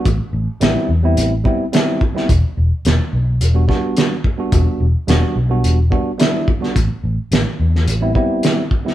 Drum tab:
HH |x---x---x---x---|x---x---x---x---|x---x---x---x---|x---x---x---x---|
SD |----o-------o--o|----o-----o-o---|----o-------o--o|----o--o----o--o|
BD |o---------o---o-|o---------o---o-|o---------o---o-|o---------o---o-|